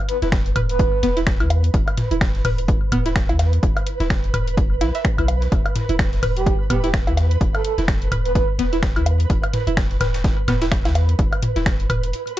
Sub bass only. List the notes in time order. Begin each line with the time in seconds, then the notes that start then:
0.22 E1
0.56 E1
1.03 E1
1.40 E2
1.74 E1
2.11 E1
2.45 E1
2.92 E1
3.29 E2
3.63 E1
4.00 E1
4.34 E1
4.81 B1
5.18 B1
5.52 E1
5.89 E1
6.23 E1
6.70 E1
7.07 E2
7.41 E1
7.78 E1
8.12 E1
8.59 E1
8.96 E2
9.30 E1
9.67 E1
10.01 E1
10.48 E1
10.85 E2
11.19 E1
11.56 E1
11.90 E1